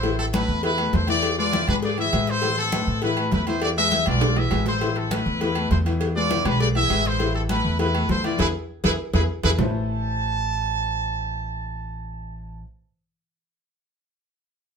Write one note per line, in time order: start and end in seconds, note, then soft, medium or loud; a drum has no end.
0.00 0.43 A1 medium
0.00 0.28 E3 medium
0.00 0.19 E4 medium
0.00 0.28 E4 medium
0.00 0.19 C5 loud
0.00 0.28 E5 medium
0.00 cowbell loud
0.00 high conga soft
0.00 low agogo medium
0.19 0.26 C4 medium
0.19 0.26 A4 loud
0.19 high conga soft
0.19 low agogo medium
0.33 0.58 A3 medium
0.33 0.62 E4 medium
0.33 0.58 A4 medium
0.33 0.58 B4 medium
0.33 0.62 B4 loud
0.33 cowbell medium
0.33 high conga loud
0.33 low timbale medium
0.33 low agogo loud
0.48 0.90 E2 loud
0.48 high conga soft
0.63 0.76 E3 medium
0.63 0.76 E4 medium
0.63 0.92 E4 medium
0.63 0.91 B4 loud
0.63 0.76 E5 medium
0.63 cowbell loud
0.63 high conga soft
0.63 low agogo medium
0.78 1.03 A3 medium
0.78 1.03 A4 medium
0.78 1.03 B4 medium
0.78 high conga soft
0.78 low agogo loud
0.93 1.62 E2 medium
0.93 1.09 E4 medium
0.93 1.09 C5 loud
0.93 cowbell medium
0.93 high conga medium
0.93 low timbale medium
1.07 1.33 E3 loud
1.07 1.33 E4 loud
1.07 1.37 G#4 medium
1.07 1.37 D5 loud
1.07 1.33 E5 medium
1.07 cowbell medium
1.07 high conga soft
1.07 low agogo medium
1.23 cowbell loud
1.23 high conga soft
1.23 low agogo loud
1.38 1.50 G#3 medium
1.38 1.66 F4 medium
1.38 1.50 G#4 medium
1.38 1.51 B4 medium
1.38 1.66 D5 loud
1.38 high conga soft
1.53 1.65 E3 loud
1.53 1.65 E4 medium
1.53 1.65 E5 loud
1.53 cowbell medium
1.53 high conga loud
1.53 low timbale medium
1.53 low agogo medium
1.67 2.10 G#2 medium
1.67 1.93 G#3 medium
1.67 1.76 D4 medium
1.67 1.93 G#4 medium
1.67 1.93 B4 medium
1.67 1.76 B4 loud
1.67 high conga soft
1.67 low conga medium
1.67 low agogo loud
1.83 1.98 G#4 medium
1.83 1.98 D5 loud
1.83 cowbell loud
1.83 high conga soft
1.98 2.10 E3 medium
1.98 2.11 E4 loud
1.98 2.27 G#4 loud
1.98 2.11 E5 loud
1.98 2.27 E5 loud
1.98 high conga soft
1.98 low agogo medium
2.13 2.82 A2 medium
2.13 2.38 G#3 medium
2.13 2.38 G#4 medium
2.13 2.38 B4 medium
2.13 cowbell medium
2.13 high conga soft
2.13 low timbale medium
2.13 low agogo loud
2.27 2.58 E4 medium
2.27 2.58 C5 loud
2.27 cowbell medium
2.27 high conga soft
2.42 2.67 E3 medium
2.42 2.68 E4 medium
2.42 2.68 E5 medium
2.42 cowbell loud
2.42 high conga soft
2.42 low agogo medium
2.57 3.00 C4 medium
2.57 3.00 A4 loud
2.57 high conga soft
2.57 low agogo medium
2.72 2.97 A3 medium
2.72 2.98 A4 medium
2.72 2.98 B4 medium
2.72 cowbell medium
2.72 high conga loud
2.72 low timbale medium
2.72 low agogo loud
2.87 3.29 A2 medium
2.87 high conga soft
3.02 3.15 E3 medium
3.02 3.15 E4 loud
3.02 3.31 E4 medium
3.02 3.31 B4 loud
3.02 3.15 E5 medium
3.02 cowbell loud
3.02 high conga soft
3.02 low agogo medium
3.17 3.42 A3 medium
3.17 3.43 A4 medium
3.17 3.43 B4 medium
3.17 high conga soft
3.17 low agogo loud
3.31 4.01 E2 loud
3.31 3.46 E4 medium
3.31 3.47 B4 medium
3.31 cowbell medium
3.31 high conga medium
3.31 low timbale medium
3.47 3.72 E3 loud
3.47 3.61 E4 medium
3.47 3.72 E4 medium
3.47 3.61 C5 medium
3.47 3.72 E5 loud
3.47 cowbell medium
3.47 high conga soft
3.47 low agogo medium
3.62 3.70 G#4 medium
3.62 3.70 D5 loud
3.62 cowbell loud
3.62 high conga soft
3.62 low agogo loud
3.77 3.89 G#3 medium
3.77 3.90 G#4 medium
3.77 4.06 G#4 medium
3.77 3.90 B4 medium
3.77 4.05 E5 loud
3.77 high conga soft
3.91 4.04 E3 medium
3.91 4.05 E4 medium
3.91 4.05 E5 medium
3.91 cowbell medium
3.91 high conga medium
3.91 low timbale medium
3.91 low agogo medium
4.06 4.49 B1 medium
4.06 4.31 G#3 medium
4.06 4.35 F4 medium
4.06 4.32 G#4 medium
4.06 4.32 B4 medium
4.06 4.35 D5 loud
4.06 high conga soft
4.06 low conga medium
4.06 low agogo loud
4.21 cowbell loud
4.21 high conga soft
4.21 low conga medium
4.21 high timbale loud
4.36 4.49 E3 medium
4.36 4.49 E4 medium
4.36 4.67 G#4 medium
4.36 4.49 E5 medium
4.36 4.67 E5 loud
4.36 high conga soft
4.36 low timbale medium
4.36 low agogo medium
4.51 5.21 A1 medium
4.51 4.76 G#3 medium
4.51 4.76 G#4 medium
4.51 4.77 B4 medium
4.51 cowbell medium
4.51 high conga soft
4.51 low timbale loud
4.51 low agogo loud
4.66 4.95 E4 medium
4.66 4.95 C5 loud
4.66 cowbell medium
4.66 high conga soft
4.66 low timbale loud
4.81 5.06 E3 medium
4.81 5.06 E4 medium
4.81 5.06 E5 medium
4.81 cowbell loud
4.81 high conga soft
4.81 low agogo medium
4.96 5.12 C4 medium
4.96 5.12 A4 medium
4.96 high conga soft
4.96 low agogo medium
5.11 5.36 A3 medium
5.11 5.41 E4 medium
5.11 5.36 A4 medium
5.11 5.36 B4 medium
5.11 5.41 B4 loud
5.11 cowbell medium
5.11 high conga loud
5.11 low timbale medium
5.11 low agogo loud
5.26 5.68 E2 loud
5.26 high conga soft
5.41 5.54 E3 loud
5.41 5.54 E4 medium
5.41 5.69 E4 medium
5.41 5.69 B4 loud
5.41 5.54 E5 medium
5.41 cowbell loud
5.41 high conga soft
5.41 low agogo medium
5.55 5.81 A3 medium
5.55 5.81 A4 medium
5.55 5.81 B4 medium
5.55 high conga soft
5.55 low agogo loud
5.71 6.40 E2 medium
5.71 5.78 E4 medium
5.71 5.78 C5 medium
5.71 cowbell medium
5.71 high conga medium
5.71 low timbale medium
5.86 6.10 E3 loud
5.86 6.11 E4 medium
5.86 6.11 E5 medium
5.86 cowbell medium
5.86 high conga soft
5.86 low agogo medium
6.01 cowbell loud
6.01 high conga soft
6.01 low agogo loud
6.16 6.28 G#3 medium
6.16 6.44 F4 medium
6.16 6.28 G#4 medium
6.16 6.28 B4 medium
6.16 6.44 D5 loud
6.16 high conga soft
6.30 6.43 E3 medium
6.30 6.43 E4 loud
6.30 6.43 E5 medium
6.30 cowbell medium
6.30 high conga loud
6.30 low timbale medium
6.30 low agogo medium
6.45 6.87 B1 loud
6.45 6.70 G#3 medium
6.45 6.61 D4 medium
6.45 6.70 G#4 medium
6.45 6.70 B4 medium
6.45 6.61 B4 loud
6.45 high conga soft
6.45 low conga medium
6.45 low agogo loud
6.60 6.68 G#4 medium
6.60 6.67 D5 loud
6.60 cowbell loud
6.60 high conga soft
6.75 6.88 E3 medium
6.75 6.88 E4 medium
6.75 7.04 G#4 medium
6.75 6.88 E5 medium
6.75 7.04 E5 loud
6.75 high conga soft
6.75 low agogo loud
6.90 7.59 A1 medium
6.90 7.15 G#3 medium
6.90 7.15 G#4 medium
6.90 7.15 B4 medium
6.90 cowbell medium
6.90 high conga soft
6.90 low timbale medium
6.90 low agogo loud
7.05 7.36 E4 medium
7.05 7.35 C5 loud
7.05 cowbell medium
7.05 high conga soft
7.19 7.44 E3 medium
7.19 7.45 E4 medium
7.19 7.45 E5 medium
7.19 cowbell loud
7.19 high conga soft
7.19 low agogo medium
7.34 7.42 C4 medium
7.34 7.42 A4 medium
7.34 high conga soft
7.34 low agogo medium
7.49 7.74 A3 medium
7.49 7.78 E4 medium
7.49 7.74 A4 medium
7.49 7.74 B4 medium
7.49 7.78 B4 loud
7.49 cowbell medium
7.49 high conga loud
7.49 low timbale medium
7.49 low agogo loud
7.65 8.06 E2 medium
7.79 7.92 E3 loud
7.79 7.92 E4 medium
7.79 8.08 E4 medium
7.79 8.08 B4 loud
7.79 7.92 E5 medium
7.79 cowbell loud
7.79 high conga soft
7.79 low agogo loud
7.94 8.19 A3 medium
7.94 8.19 A4 medium
7.94 8.19 B4 medium
7.94 high conga soft
7.94 low agogo loud
8.09 8.37 E2 medium
8.09 8.24 E4 medium
8.09 8.24 C5 loud
8.09 cowbell medium
8.09 high conga medium
8.09 low timbale loud
8.24 8.37 E3 medium
8.24 8.37 E4 loud
8.24 8.39 F4 medium
8.24 8.39 D5 loud
8.24 8.37 E5 loud
8.24 cowbell medium
8.24 high conga soft
8.24 low agogo loud
8.39 8.51 E2 loud
8.39 8.49 E4 loud
8.39 8.47 E4 loud
8.39 8.49 G#4 loud
8.39 8.47 G#4 medium
8.39 8.49 B4 loud
8.39 8.47 B4 medium
8.39 cowbell loud
8.39 high conga loud
8.39 high timbale loud
8.84 8.95 E2 loud
8.84 8.93 E4 loud
8.84 8.92 E4 loud
8.84 8.93 G#4 loud
8.84 8.92 G#4 loud
8.84 8.93 B4 loud
8.84 8.92 B4 loud
8.84 cowbell loud
8.84 high conga loud
8.84 high timbale loud
9.13 9.25 E2 loud
9.13 9.24 E4 loud
9.13 9.21 E4 medium
9.13 9.24 G#4 loud
9.13 9.22 G#4 loud
9.13 9.24 B4 loud
9.13 9.22 B4 loud
9.13 cowbell loud
9.13 high conga loud
9.13 high timbale loud
9.43 9.55 E2 medium
9.43 9.53 E4 loud
9.43 9.51 E4 loud
9.43 9.53 G#4 loud
9.43 9.52 G#4 loud
9.43 9.53 B4 loud
9.43 9.51 B4 loud
9.43 cowbell loud
9.43 high conga loud
9.43 high timbale loud
9.58 12.62 A1 loud
9.58 12.61 A3 medium
9.58 12.61 E4 medium
9.58 12.62 A4 medium
9.58 12.62 B4 medium
9.58 12.62 C5 medium
9.58 12.62 E5 loud
9.58 12.62 A5 loud
9.58 low bongo loud
9.58 low conga loud
9.58 low timbale loud